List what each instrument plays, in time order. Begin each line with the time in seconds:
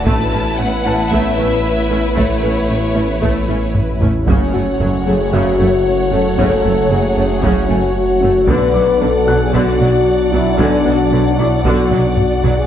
0.05 detuned saw bass A1, cello section A2, viola section A3, synth pluck A3, ambient pad A3 B3 E4 C#5, violin section E4 B4 A5, taiko
0.32 cello section A2, viola section A3 C#4, synth pluck A4
0.57 cello section A2, viola section A3 B3, synth pluck C#4, violin section F#5
0.85 cello section A2, viola section A3 C#4, synth pluck E4, grand piano A5
1.10 cello section A2, synth pluck A3, viola section A3, violin section E5, taiko
1.38 cello section A2, viola section A3 C#4, synth pluck E4
1.90 cello section A2, viola section A3 C#4, synth pluck E4
2.16 cello section A2, viola section A3, synth pluck A3, violin section C#5, taiko
2.43 cello section A2, viola section A3 C#4, synth pluck A4
2.69 cello section A2, viola section A3 B3, synth pluck C#4
2.95 cello section A2, viola section A3 C#4, synth pluck E4
3.21 cello section A2, viola section A3, synth pluck A3, taiko
3.48 cello section A2, viola section A3 C#4, synth pluck E4, taiko high
3.74 taiko low-mid
4.01 cello section A2, viola section A3 C#4, synth pluck E4, taiko low
4.26 detuned saw bass F#1, double bass section F#1, cello section F#2, viola section C#3, synth pluck F#3, ambient pad F#3 A3 F#4 C#5, trombone section F#3 A3, french horn section C#4, violin section C#5 F#5, taiko
4.54 double bass section F#1, cello section F#2, viola section A3, synth pluck F#4
4.80 double bass section F#1, cello section F#2, viola section F#3, synth pluck A3, taiko low
5.06 double bass section F#1, cello section F#2, viola section A3, synth pluck C#4, french horn section G#4
5.32 double bass section F#1, cello section F#2, viola section C#3, synth pluck F#3, french horn section F#4, grand piano E5, taiko
5.59 double bass section F#1, cello section F#2, viola section A3, synth pluck C#4
6.11 double bass section F#1, cello section F#2, viola section A3, synth pluck C#4, french horn section A4
6.38 double bass section F#1, cello section F#2, viola section C#3, synth pluck F#3, taiko
6.65 double bass section F#1, cello section F#2, viola section A3, synth pluck F#4
6.90 double bass section F#1, cello section F#2, viola section F#3, synth pluck A3, french horn section G#4
7.16 double bass section F#1, cello section F#2, viola section A3, synth pluck C#4
7.42 double bass section F#1, cello section F#2, viola section C#3, synth pluck F#3, french horn section F#4, taiko
7.68 double bass section F#1, cello section F#2, viola section A3, synth pluck C#4, grand piano G#5
7.96 french horn section F#4
8.21 double bass section F#1, cello section F#2, viola section A3, synth pluck C#4
8.47 double bass section B1, detuned saw bass B1, cello section B2, viola section D3, ambient pad F#3 B3 F#4 D5, trombone section F#3 D4, synth pluck B3, french horn section B4, violin section D5 F#5, taiko
8.74 double bass section B1, cello section B2, viola section F#3, synth pluck B4, grand piano D6
9.01 double bass section B1, cello section B2, viola section D3, synth pluck D4, french horn section A4
9.27 double bass section B1, cello section B2, viola section F#3, synth pluck F#4, grand piano F#5 F#6
9.42 french horn section G#4
9.53 double bass section B1, cello section B2, viola section D3, synth pluck B3, french horn section F#4, taiko
9.80 double bass section B1, cello section B2, viola section F#3, synth pluck F#4
10.32 double bass section B1, cello section B2, viola section F#3, french horn section E4, synth pluck F#4
10.58 double bass section B1, cello section B2, viola section D3, synth pluck B3, french horn section D4, grand piano G#5 G#6, taiko
10.86 double bass section B1, cello section B2, viola section F#3, synth pluck B4
11.11 double bass section B1, cello section B2, viola section D3, synth pluck D4
11.38 double bass section B1, cello section B2, viola section F#3, french horn section E4, synth pluck F#4, grand piano D5 D6
11.65 double bass section B1, cello section B2, viola section D3, synth pluck B3, french horn section F#4, taiko
11.91 double bass section B1, cello section B2, viola section F#3, synth pluck F#4, taiko mid
12.17 french horn section F#4, taiko low-mid
12.43 double bass section B1, cello section B2, viola section F#3, synth pluck F#4, taiko low
12.58 french horn section G#4